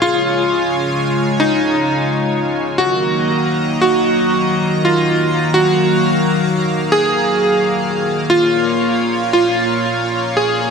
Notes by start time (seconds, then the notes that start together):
Already playing: F4 C#5
0.02 C#3 G#3 F4 G#5
1.40 D#4
2.78 D#3 F#3 A#3 F#4 D#5 A#5
3.82 F#4
4.85 F4
5.54 F#4 F5
6.92 G#4
8.30 A#2 F4 C#5
9.33 F4
10.37 G#4